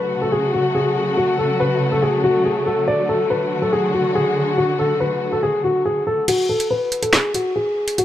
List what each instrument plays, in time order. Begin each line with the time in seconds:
Already playing: string section C#3 F#3 A3 F#4, upright piano B4
0.22 upright piano A4
0.32 upright piano G#4
0.54 upright piano F#4
0.75 upright piano G#4
1.17 upright piano F#4
1.39 upright piano A4
1.60 upright piano B4
1.92 upright piano A4
2.03 upright piano G#4
2.24 upright piano F#4
2.45 upright piano G#4
2.66 upright piano A4
2.88 string section D3 F#4, upright piano D5
3.09 upright piano A4
3.30 upright piano B4
3.62 upright piano A4
3.73 upright piano G#4
3.94 upright piano F#4
4.15 upright piano G#4
4.58 upright piano F#4
4.79 upright piano A4
5.00 upright piano B4
5.32 upright piano A4
5.43 upright piano G#4
5.64 upright piano F#4
5.86 upright piano G#4
6.07 upright piano A4
6.28 upright piano F#4, closed hi-hat, crash
6.49 upright piano A4
6.60 closed hi-hat
6.71 upright piano B4
6.92 closed hi-hat
7.02 upright piano A4, closed hi-hat
7.13 upright piano G#4, snare, clap, closed hi-hat
7.34 upright piano F#4, closed hi-hat
7.56 upright piano G#4
7.88 closed hi-hat
7.98 upright piano F#4, closed hi-hat